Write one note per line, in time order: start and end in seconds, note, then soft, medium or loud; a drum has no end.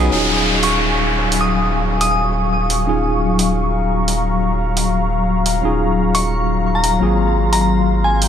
0.00 0.10 B1 loud
0.00 0.10 F#3 loud
0.00 0.14 B3 medium
0.00 0.10 C#4 medium
0.00 0.11 D#4 medium
0.00 0.13 G#4 loud
0.00 0.14 B4 loud
0.10 5.61 D#1 medium
0.10 2.84 F#3 medium
0.10 8.28 F#3 medium
0.10 2.85 C#4 medium
0.10 2.85 D#4 medium
0.10 2.86 F4 medium
0.10 2.86 G#4 medium
0.10 8.28 F5 medium
0.10 3.53 G#5 medium
0.10 6.97 C#6 medium
0.10 downlifter medium
0.63 0.84 C#6 medium
0.63 open hi-hat medium
1.32 open hi-hat medium
1.41 1.67 D#6 medium
2.01 2.27 D#6 medium
2.01 open hi-hat medium
2.70 open hi-hat medium
2.85 5.60 F#3 medium
2.85 5.61 C#4 medium
2.85 5.61 D#4 medium
2.85 5.62 F4 medium
2.85 5.62 G#4 medium
3.39 open hi-hat medium
3.57 8.28 A#5 medium
4.08 open hi-hat medium
4.77 open hi-hat medium
5.46 open hi-hat medium
5.62 6.99 D#1 medium
5.62 6.98 F#3 medium
5.62 6.99 C#4 medium
5.62 6.99 D#4 medium
5.62 7.00 F4 medium
5.62 7.00 G#4 medium
6.15 6.35 C#6 medium
6.15 open hi-hat medium
6.75 6.96 A#5 medium
6.84 open hi-hat medium
6.99 8.28 G#1 medium
6.99 8.28 F#3 medium
6.99 8.28 A#3 medium
6.99 8.28 C4 medium
6.99 8.28 F4 medium
6.99 8.28 G#4 medium
6.99 8.28 C6 medium
7.53 7.58 A#5 medium
7.53 open hi-hat medium
7.61 7.67 A#5 medium
8.04 8.28 G#5 medium
8.22 open hi-hat medium